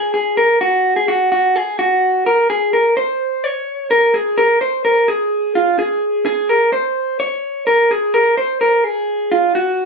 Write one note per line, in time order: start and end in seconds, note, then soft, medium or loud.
0.00 0.13 G#4 medium
0.14 0.37 G#4 medium
0.37 0.61 A#4 medium
0.61 0.94 F#4 medium
0.96 1.08 G#4 medium
1.08 1.31 F#4 medium
1.32 1.56 F#4 medium
1.56 1.78 G#4 medium
1.79 2.23 F#4 medium
2.26 2.49 A#4 medium
2.50 2.73 G#4 loud
2.73 2.96 A#4 medium
2.97 3.44 C5 medium
3.44 3.88 C#5 medium
3.91 4.14 A#4 medium
4.14 4.38 G#4 medium
4.38 4.61 A#4 loud
4.61 4.84 C5 medium
4.85 5.08 A#4 medium
5.08 5.53 G#4 medium
5.55 5.78 F4 medium
5.79 6.23 G#4 medium
6.26 6.49 G#4 loud
6.49 6.72 A#4 medium
6.73 7.17 C5 medium
7.20 7.64 C#5 medium
7.67 7.91 A#4 medium
7.91 8.14 G#4 medium
8.14 8.37 A#4 loud
8.37 8.61 C5 medium
8.61 8.84 A#4 medium
8.84 9.29 G#4 medium
9.32 9.55 F4 medium
9.55 9.85 F#4 medium